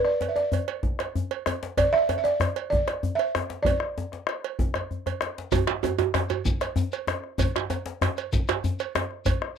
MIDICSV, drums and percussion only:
0, 0, Header, 1, 5, 480
1, 0, Start_track
1, 0, Tempo, 312012
1, 2734, Time_signature, 12, 3, 24, 8
1, 14738, End_track
2, 0, Start_track
2, 0, Title_t, "Bombo"
2, 70, Note_on_c, 9, 37, 56
2, 224, Note_off_c, 9, 37, 0
2, 1275, Note_on_c, 9, 43, 76
2, 1429, Note_off_c, 9, 43, 0
2, 1522, Note_on_c, 9, 37, 64
2, 1676, Note_off_c, 9, 37, 0
2, 2246, Note_on_c, 9, 37, 75
2, 2400, Note_off_c, 9, 37, 0
2, 2505, Note_on_c, 9, 37, 27
2, 2659, Note_off_c, 9, 37, 0
2, 2736, Note_on_c, 9, 37, 25
2, 2736, Note_on_c, 9, 43, 71
2, 2890, Note_off_c, 9, 37, 0
2, 2890, Note_off_c, 9, 43, 0
2, 2984, Note_on_c, 9, 37, 67
2, 3137, Note_off_c, 9, 37, 0
2, 3704, Note_on_c, 9, 37, 91
2, 3858, Note_off_c, 9, 37, 0
2, 4194, Note_on_c, 9, 43, 80
2, 4348, Note_off_c, 9, 43, 0
2, 4427, Note_on_c, 9, 37, 71
2, 4581, Note_off_c, 9, 37, 0
2, 5152, Note_on_c, 9, 37, 94
2, 5306, Note_off_c, 9, 37, 0
2, 5378, Note_on_c, 9, 37, 34
2, 5532, Note_off_c, 9, 37, 0
2, 5609, Note_on_c, 9, 43, 100
2, 5763, Note_off_c, 9, 43, 0
2, 5848, Note_on_c, 9, 37, 83
2, 6002, Note_off_c, 9, 37, 0
2, 6341, Note_on_c, 9, 37, 29
2, 6494, Note_off_c, 9, 37, 0
2, 6566, Note_on_c, 9, 37, 91
2, 6719, Note_off_c, 9, 37, 0
2, 7057, Note_on_c, 9, 43, 88
2, 7210, Note_off_c, 9, 43, 0
2, 7293, Note_on_c, 9, 37, 76
2, 7447, Note_off_c, 9, 37, 0
2, 7786, Note_on_c, 9, 37, 27
2, 7940, Note_off_c, 9, 37, 0
2, 8012, Note_on_c, 9, 37, 91
2, 8165, Note_off_c, 9, 37, 0
2, 8489, Note_on_c, 9, 37, 32
2, 8489, Note_on_c, 9, 43, 93
2, 8643, Note_off_c, 9, 37, 0
2, 8643, Note_off_c, 9, 43, 0
2, 8727, Note_on_c, 9, 37, 79
2, 8881, Note_off_c, 9, 37, 0
2, 9446, Note_on_c, 9, 37, 94
2, 9600, Note_off_c, 9, 37, 0
2, 9933, Note_on_c, 9, 43, 88
2, 10087, Note_off_c, 9, 43, 0
2, 10171, Note_on_c, 9, 37, 64
2, 10325, Note_off_c, 9, 37, 0
2, 10895, Note_on_c, 9, 37, 100
2, 11049, Note_off_c, 9, 37, 0
2, 11132, Note_on_c, 9, 37, 28
2, 11286, Note_off_c, 9, 37, 0
2, 11364, Note_on_c, 9, 37, 29
2, 11364, Note_on_c, 9, 43, 89
2, 11517, Note_off_c, 9, 37, 0
2, 11517, Note_off_c, 9, 43, 0
2, 11626, Note_on_c, 9, 37, 70
2, 11780, Note_off_c, 9, 37, 0
2, 12340, Note_on_c, 9, 37, 96
2, 12494, Note_off_c, 9, 37, 0
2, 12818, Note_on_c, 9, 43, 91
2, 12972, Note_off_c, 9, 43, 0
2, 13058, Note_on_c, 9, 37, 76
2, 13211, Note_off_c, 9, 37, 0
2, 13777, Note_on_c, 9, 37, 103
2, 13931, Note_off_c, 9, 37, 0
2, 14009, Note_on_c, 9, 37, 35
2, 14163, Note_off_c, 9, 37, 0
2, 14253, Note_on_c, 9, 37, 30
2, 14253, Note_on_c, 9, 43, 84
2, 14407, Note_off_c, 9, 37, 0
2, 14407, Note_off_c, 9, 43, 0
2, 14490, Note_on_c, 9, 37, 74
2, 14644, Note_off_c, 9, 37, 0
2, 14738, End_track
3, 0, Start_track
3, 0, Title_t, "Djembe"
3, 319, Note_on_c, 9, 62, 22
3, 319, Note_on_c, 9, 63, 72
3, 473, Note_off_c, 9, 62, 0
3, 473, Note_off_c, 9, 63, 0
3, 559, Note_on_c, 9, 62, 45
3, 712, Note_off_c, 9, 62, 0
3, 797, Note_on_c, 9, 64, 63
3, 951, Note_off_c, 9, 64, 0
3, 1276, Note_on_c, 9, 62, 18
3, 1276, Note_on_c, 9, 63, 58
3, 1430, Note_off_c, 9, 62, 0
3, 1430, Note_off_c, 9, 63, 0
3, 1537, Note_on_c, 9, 62, 46
3, 1691, Note_off_c, 9, 62, 0
3, 1777, Note_on_c, 9, 64, 59
3, 1930, Note_off_c, 9, 64, 0
3, 2014, Note_on_c, 9, 62, 22
3, 2168, Note_off_c, 9, 62, 0
3, 2253, Note_on_c, 9, 63, 73
3, 2407, Note_off_c, 9, 63, 0
3, 2503, Note_on_c, 9, 62, 61
3, 2657, Note_off_c, 9, 62, 0
3, 2729, Note_on_c, 9, 64, 66
3, 2883, Note_off_c, 9, 64, 0
3, 3215, Note_on_c, 9, 62, 23
3, 3215, Note_on_c, 9, 63, 76
3, 3369, Note_off_c, 9, 62, 0
3, 3369, Note_off_c, 9, 63, 0
3, 3459, Note_on_c, 9, 62, 52
3, 3613, Note_off_c, 9, 62, 0
3, 3692, Note_on_c, 9, 64, 65
3, 3846, Note_off_c, 9, 64, 0
3, 4189, Note_on_c, 9, 62, 21
3, 4189, Note_on_c, 9, 63, 63
3, 4343, Note_off_c, 9, 62, 0
3, 4343, Note_off_c, 9, 63, 0
3, 4430, Note_on_c, 9, 62, 44
3, 4584, Note_off_c, 9, 62, 0
3, 4663, Note_on_c, 9, 64, 59
3, 4817, Note_off_c, 9, 64, 0
3, 4920, Note_on_c, 9, 62, 18
3, 5074, Note_off_c, 9, 62, 0
3, 5158, Note_on_c, 9, 63, 71
3, 5312, Note_off_c, 9, 63, 0
3, 5385, Note_on_c, 9, 62, 56
3, 5538, Note_off_c, 9, 62, 0
3, 5630, Note_on_c, 9, 64, 64
3, 5783, Note_off_c, 9, 64, 0
3, 6117, Note_on_c, 9, 62, 24
3, 6117, Note_on_c, 9, 63, 71
3, 6271, Note_off_c, 9, 62, 0
3, 6271, Note_off_c, 9, 63, 0
3, 6353, Note_on_c, 9, 62, 46
3, 6507, Note_off_c, 9, 62, 0
3, 7063, Note_on_c, 9, 63, 65
3, 7217, Note_off_c, 9, 63, 0
3, 7312, Note_on_c, 9, 64, 34
3, 7466, Note_off_c, 9, 64, 0
3, 7551, Note_on_c, 9, 64, 36
3, 7705, Note_off_c, 9, 64, 0
3, 7791, Note_on_c, 9, 64, 46
3, 7945, Note_off_c, 9, 64, 0
3, 8032, Note_on_c, 9, 62, 57
3, 8186, Note_off_c, 9, 62, 0
3, 8280, Note_on_c, 9, 62, 56
3, 8434, Note_off_c, 9, 62, 0
3, 8493, Note_on_c, 9, 63, 105
3, 8513, Note_on_c, 9, 64, 80
3, 8646, Note_off_c, 9, 63, 0
3, 8667, Note_off_c, 9, 64, 0
3, 8729, Note_on_c, 9, 62, 94
3, 8883, Note_off_c, 9, 62, 0
3, 8968, Note_on_c, 9, 63, 85
3, 8987, Note_off_c, 9, 63, 0
3, 8987, Note_on_c, 9, 62, 26
3, 8987, Note_on_c, 9, 63, 86
3, 9141, Note_off_c, 9, 62, 0
3, 9141, Note_off_c, 9, 63, 0
3, 9207, Note_on_c, 9, 63, 109
3, 9217, Note_on_c, 9, 62, 61
3, 9361, Note_off_c, 9, 63, 0
3, 9371, Note_off_c, 9, 62, 0
3, 9452, Note_on_c, 9, 64, 71
3, 9453, Note_on_c, 9, 62, 75
3, 9606, Note_off_c, 9, 64, 0
3, 9607, Note_off_c, 9, 62, 0
3, 9695, Note_on_c, 9, 63, 76
3, 9849, Note_off_c, 9, 63, 0
3, 9928, Note_on_c, 9, 62, 22
3, 9928, Note_on_c, 9, 63, 73
3, 10082, Note_off_c, 9, 62, 0
3, 10082, Note_off_c, 9, 63, 0
3, 10171, Note_on_c, 9, 62, 57
3, 10325, Note_off_c, 9, 62, 0
3, 10397, Note_on_c, 9, 64, 75
3, 10550, Note_off_c, 9, 64, 0
3, 10653, Note_on_c, 9, 62, 22
3, 10807, Note_off_c, 9, 62, 0
3, 10883, Note_on_c, 9, 63, 79
3, 11036, Note_off_c, 9, 63, 0
3, 11357, Note_on_c, 9, 64, 86
3, 11510, Note_off_c, 9, 64, 0
3, 11634, Note_on_c, 9, 62, 82
3, 11788, Note_off_c, 9, 62, 0
3, 11844, Note_on_c, 9, 62, 30
3, 11844, Note_on_c, 9, 63, 92
3, 11998, Note_off_c, 9, 62, 0
3, 11998, Note_off_c, 9, 63, 0
3, 12086, Note_on_c, 9, 62, 65
3, 12240, Note_off_c, 9, 62, 0
3, 12331, Note_on_c, 9, 64, 73
3, 12351, Note_on_c, 9, 62, 71
3, 12484, Note_off_c, 9, 64, 0
3, 12505, Note_off_c, 9, 62, 0
3, 12812, Note_on_c, 9, 62, 21
3, 12812, Note_on_c, 9, 63, 78
3, 12966, Note_off_c, 9, 62, 0
3, 12966, Note_off_c, 9, 63, 0
3, 13056, Note_on_c, 9, 62, 52
3, 13062, Note_off_c, 9, 62, 0
3, 13062, Note_on_c, 9, 62, 79
3, 13216, Note_off_c, 9, 62, 0
3, 13294, Note_on_c, 9, 64, 65
3, 13448, Note_off_c, 9, 64, 0
3, 13541, Note_on_c, 9, 62, 24
3, 13695, Note_off_c, 9, 62, 0
3, 13772, Note_on_c, 9, 63, 75
3, 13783, Note_on_c, 9, 62, 68
3, 13926, Note_off_c, 9, 63, 0
3, 13937, Note_off_c, 9, 62, 0
3, 14250, Note_on_c, 9, 64, 66
3, 14404, Note_off_c, 9, 64, 0
3, 14738, End_track
4, 0, Start_track
4, 0, Title_t, "Shekere"
4, 8488, Note_on_c, 9, 82, 61
4, 8641, Note_off_c, 9, 82, 0
4, 8971, Note_on_c, 9, 82, 15
4, 9125, Note_off_c, 9, 82, 0
4, 9685, Note_on_c, 9, 82, 20
4, 9839, Note_off_c, 9, 82, 0
4, 9926, Note_on_c, 9, 82, 59
4, 10080, Note_off_c, 9, 82, 0
4, 10169, Note_on_c, 9, 82, 19
4, 10323, Note_off_c, 9, 82, 0
4, 10411, Note_on_c, 9, 82, 18
4, 10565, Note_off_c, 9, 82, 0
4, 10649, Note_on_c, 9, 82, 21
4, 10803, Note_off_c, 9, 82, 0
4, 11373, Note_on_c, 9, 82, 59
4, 11527, Note_off_c, 9, 82, 0
4, 11850, Note_on_c, 9, 82, 17
4, 12003, Note_off_c, 9, 82, 0
4, 12577, Note_on_c, 9, 82, 18
4, 12731, Note_off_c, 9, 82, 0
4, 12808, Note_on_c, 9, 82, 60
4, 12962, Note_off_c, 9, 82, 0
4, 13047, Note_on_c, 9, 82, 19
4, 13201, Note_off_c, 9, 82, 0
4, 13295, Note_on_c, 9, 82, 21
4, 13449, Note_off_c, 9, 82, 0
4, 13529, Note_on_c, 9, 82, 21
4, 13683, Note_off_c, 9, 82, 0
4, 14237, Note_on_c, 9, 82, 64
4, 14391, Note_off_c, 9, 82, 0
4, 14738, End_track
5, 0, Start_track
5, 0, Title_t, "Drums"
5, 336, Note_on_c, 9, 56, 44
5, 490, Note_off_c, 9, 56, 0
5, 821, Note_on_c, 9, 56, 45
5, 975, Note_off_c, 9, 56, 0
5, 1045, Note_on_c, 9, 56, 52
5, 1199, Note_off_c, 9, 56, 0
5, 1540, Note_on_c, 9, 56, 46
5, 1693, Note_off_c, 9, 56, 0
5, 2015, Note_on_c, 9, 56, 51
5, 2169, Note_off_c, 9, 56, 0
5, 2264, Note_on_c, 9, 56, 51
5, 2418, Note_off_c, 9, 56, 0
5, 2737, Note_on_c, 9, 56, 69
5, 2891, Note_off_c, 9, 56, 0
5, 3219, Note_on_c, 9, 56, 52
5, 3373, Note_off_c, 9, 56, 0
5, 3716, Note_on_c, 9, 56, 51
5, 3870, Note_off_c, 9, 56, 0
5, 3942, Note_on_c, 9, 56, 55
5, 4096, Note_off_c, 9, 56, 0
5, 4423, Note_on_c, 9, 56, 45
5, 4577, Note_off_c, 9, 56, 0
5, 4912, Note_on_c, 9, 56, 48
5, 5066, Note_off_c, 9, 56, 0
5, 5152, Note_on_c, 9, 56, 48
5, 5306, Note_off_c, 9, 56, 0
5, 5637, Note_on_c, 9, 56, 67
5, 5791, Note_off_c, 9, 56, 0
5, 6597, Note_on_c, 9, 56, 41
5, 6751, Note_off_c, 9, 56, 0
5, 6837, Note_on_c, 9, 56, 49
5, 6991, Note_off_c, 9, 56, 0
5, 7315, Note_on_c, 9, 56, 42
5, 7468, Note_off_c, 9, 56, 0
5, 7797, Note_on_c, 9, 56, 51
5, 7951, Note_off_c, 9, 56, 0
5, 8026, Note_on_c, 9, 56, 43
5, 8180, Note_off_c, 9, 56, 0
5, 8499, Note_on_c, 9, 56, 72
5, 8652, Note_off_c, 9, 56, 0
5, 8981, Note_on_c, 9, 56, 49
5, 9135, Note_off_c, 9, 56, 0
5, 9455, Note_on_c, 9, 56, 43
5, 9609, Note_off_c, 9, 56, 0
5, 9691, Note_on_c, 9, 56, 55
5, 9845, Note_off_c, 9, 56, 0
5, 10178, Note_on_c, 9, 56, 52
5, 10332, Note_off_c, 9, 56, 0
5, 10664, Note_on_c, 9, 56, 50
5, 10818, Note_off_c, 9, 56, 0
5, 10903, Note_on_c, 9, 56, 48
5, 11056, Note_off_c, 9, 56, 0
5, 11373, Note_on_c, 9, 56, 68
5, 11527, Note_off_c, 9, 56, 0
5, 11852, Note_on_c, 9, 56, 46
5, 12006, Note_off_c, 9, 56, 0
5, 12337, Note_on_c, 9, 56, 50
5, 12491, Note_off_c, 9, 56, 0
5, 12585, Note_on_c, 9, 56, 52
5, 12739, Note_off_c, 9, 56, 0
5, 13066, Note_on_c, 9, 56, 47
5, 13220, Note_off_c, 9, 56, 0
5, 13540, Note_on_c, 9, 56, 55
5, 13694, Note_off_c, 9, 56, 0
5, 13784, Note_on_c, 9, 56, 51
5, 13938, Note_off_c, 9, 56, 0
5, 14247, Note_on_c, 9, 56, 69
5, 14401, Note_off_c, 9, 56, 0
5, 14738, End_track
0, 0, End_of_file